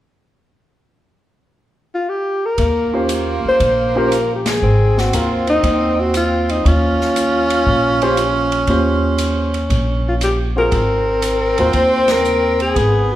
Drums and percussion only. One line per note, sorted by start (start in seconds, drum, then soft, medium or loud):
2.58 kick soft
2.58 ride soft
3.09 hi-hat pedal soft
3.09 ride medium
3.60 kick soft
3.60 ride soft
4.12 cross-stick soft
4.12 hi-hat pedal soft
4.12 ride soft
4.46 snare medium
4.46 ride medium
4.98 snare soft
5.13 hi-hat pedal soft
5.13 ride medium
5.47 ride soft
5.63 kick soft
5.63 ride medium
6.14 cross-stick soft
6.14 hi-hat pedal soft
6.14 ride medium
6.49 ride soft
6.65 kick soft
6.65 ride soft
7.01 snare soft
7.16 hi-hat pedal medium
7.16 ride medium
7.50 ride medium
7.67 kick soft
8.02 ride soft
8.17 cross-stick soft
8.17 hi-hat pedal soft
8.17 ride soft
8.52 ride soft
8.67 kick soft
8.67 ride soft
9.18 hi-hat pedal medium
9.18 ride medium
9.54 ride soft
9.70 kick soft
9.70 ride soft
10.21 cross-stick soft
10.21 hi-hat pedal medium
10.21 ride medium
10.72 kick soft
10.72 ride soft
11.22 hi-hat pedal medium
11.22 ride medium
11.58 ride soft
11.73 kick soft
11.73 ride soft
12.08 snare medium
12.08 ride medium
12.25 hi-hat pedal soft
12.60 ride soft
12.76 kick soft
12.76 ride soft